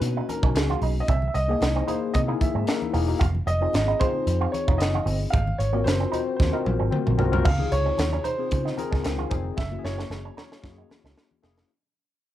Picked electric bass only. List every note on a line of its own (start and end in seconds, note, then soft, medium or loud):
0.01 0.20 B2 medium
0.43 0.51 B1 medium
0.55 0.73 C#2 medium
0.82 1.00 B1 medium
1.09 1.27 C2 loud
1.35 1.53 C2 medium
1.62 1.80 C2 medium
2.15 2.33 C3 medium
2.55 2.64 G#2 medium
2.94 3.13 E1 medium
3.21 3.39 F1 loud
3.47 3.65 F1 medium
3.74 3.93 G#1 medium
4.27 4.45 F2 medium
4.68 4.77 F1 medium
4.80 4.98 F#1 medium
5.06 5.25 G1 medium
5.34 5.52 G#1 medium
5.59 5.85 G#1 medium
5.86 6.04 F#1 medium
6.40 6.50 D#2 medium
6.66 6.76 A#1 medium
6.80 6.89 G#1 medium
7.07 7.16 A#1 medium
7.20 7.33 B1 medium
7.34 7.42 C2 medium
7.45 7.64 C#2 loud
7.72 7.90 C#2 medium
7.99 8.17 D#2 medium
8.51 8.70 C#3 loud
8.92 9.01 C#2 medium
9.05 9.23 C#2 medium
9.31 9.50 F1 medium
9.58 9.76 F#1 loud
9.85 10.03 F#1 medium
10.10 10.29 F#1 medium
10.64 10.82 F#2 loud
11.04 11.13 C#2 medium
11.44 11.62 F1 medium